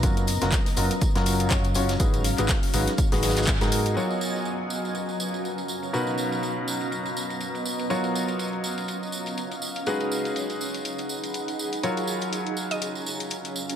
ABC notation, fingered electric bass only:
X:1
M:4/4
L:1/16
Q:"Swing 16ths" 1/4=122
K:F#
V:1 name="Fingered electric bass" clef=bass
F,,,3 F,,, z2 F,,, z2 F,,,3 z2 F,,,2 | z3 G,,, z2 G,,, z2 G,,,4 G,,3 | z16 | z16 |
z16 | z16 | z16 |]